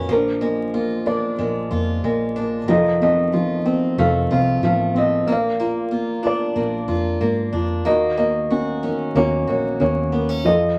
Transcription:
Already playing: F2 A#2 D#3 C#4 F#4 A#4 B4
0.09 A#1 F3 A#3 A#4
0.14 D4
0.41 G#3 A#3
0.74 A#3 F4
1.06 A#3 D4 D5
1.39 A#1 G#3 A#3
1.71 F2 A#3 F4
2.03 A#1 G#3 A#3
2.36 A#3 D4
2.68 F1 D#3 F3 D#5
2.72 A4
3.01 A3 C4 D#5
3.33 F3 F4
3.65 C4
3.97 F1 F3 A3 A4 F5
4.31 C2 C4 F4 F5
4.61 A1 F3 A3 F5
4.95 C4 D#5
5.27 A#1 A#3
5.32 D5 F5
5.60 A#3 F4
5.91 A#3 F4
6.23 D4 F4
6.27 D5
6.56 A#1 A#3
6.88 F2 F4
7.20 G#2 A#3
7.52 F2 D4 F4
7.85 D#2 D#3 A#3 D#5
7.89 F#4
8.17 A#3 D#5
8.51 C#4 F#4
8.83 D#3 C#4
9.15 D#2 A#3 C#4 F#4 C#5
9.47 A#1 A#3 F#4 C#5
9.80 D#2 A#3 C#4 C#5
10.12 A#3 B3
10.29 C#4
10.45 F2 F3 A4 D#5

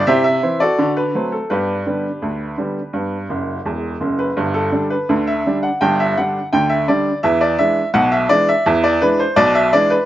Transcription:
0.07 C3 E4 G4 C5 E5
0.24 E5
0.43 E3 C4
0.60 F#4 A4 D5
0.79 D3 F#4
0.97 B4
1.15 F#3 A3 C4
1.32 A4
1.50 G2 B3 D4 G4 B4
1.86 D3 G3 B3
2.22 D2
2.58 D3 G3 B3
2.93 G2 B3
3.29 F#1 F#2
3.65 E1 E2
4.00 F#1 F#2
4.19 B4
4.37 G1 G2
4.54 A4
4.72 D3 G3 D4
4.90 B4
5.09 D2 D3
5.27 E5
5.46 D3 G3 D4
5.63 F#5
5.81 G1 G2 G5
6.00 E5
6.17 D3 G3 D4 F#5
6.53 D2 D3 G5
6.70 E5
6.88 D3 G3 D4 D5
7.23 E2 E3 E5
7.41 D5
7.58 E3 G#3 D4 E5
7.94 B1 B2 F#5
8.12 E5
8.29 E3 G#3 D4 D5
8.49 E5
8.66 E2 E3
8.84 D5
9.01 E3 G#3 D4 B4
9.19 C5
9.36 B1 B2 D5
9.55 E5
9.73 E3 G#3 D4 D5
9.90 B4

